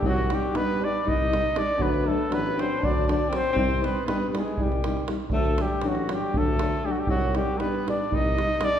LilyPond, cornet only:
\new Staff \with { instrumentName = "Cornet" } { \time 7/8 \tempo 4 = 119 fis'8 g'8 b'8 d''8 ees''4 d''8 | b'8 a'8 b'8 c''8 d''8 d''8 c''8 | c''8 b'8 b'16. b'32 aes'8 g'4 r8 | a'8 g'8 fis'8 g'8 a'4 g'32 fis'32 g'16 |
fis'8 g'8 b'8 d''8 ees''4 d''8 | }